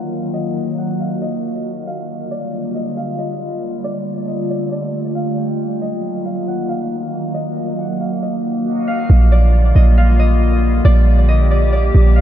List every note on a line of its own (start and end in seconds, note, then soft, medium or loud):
0.00 2.06 D#3 medium
0.00 2.06 F#3 medium
0.00 3.80 A#3 medium
0.00 0.30 F4 medium
0.00 0.33 D#5 medium
0.00 0.84 F5 medium
0.34 2.07 F#4 medium
0.34 1.21 D#5 loud
0.78 1.06 F#5 medium
1.00 1.86 F5 medium
1.22 2.37 D#5 medium
1.87 2.97 F5 medium
2.09 5.56 D3 medium
2.09 5.56 G3 medium
2.09 7.31 F4 medium
2.31 2.81 D5 medium
2.75 3.18 D#5 medium
2.97 4.63 F5 medium
3.18 3.90 D#5 medium
3.84 5.58 A3 medium
3.84 4.34 D5 loud
4.28 4.56 D#5 medium
4.50 4.72 D5 medium
4.72 5.88 D5 medium
5.15 6.24 F5 medium
5.38 6.54 G5 medium
5.59 9.06 D#3 medium
5.59 9.06 F#3 medium
5.59 9.06 A#3 medium
5.82 7.34 D#5 medium
6.25 6.54 F5 medium
6.48 6.75 F#5 medium
6.69 7.85 F5 medium
7.34 9.08 F#4 medium
7.34 8.22 D#5 loud
7.79 8.06 F#5 medium
8.00 8.87 F5 medium
8.22 9.38 D#5 medium
8.87 9.97 F5 medium
9.10 9.73 A#1 loud
9.10 12.21 D3 medium
9.10 12.21 G3 medium
9.10 12.21 A#3 medium
9.10 10.83 F4 medium
9.32 9.82 D5 medium
9.75 10.81 A#1 loud
9.75 10.19 D#5 medium
9.98 11.64 F5 medium
10.19 10.91 D#5 medium
10.85 11.90 A#1 loud
10.85 12.21 G4 medium
10.85 11.35 D5 loud
11.29 11.57 D#5 medium
11.51 11.72 D5 medium
11.73 12.21 D5 medium
11.94 12.21 A#1 loud
12.16 12.21 F5 medium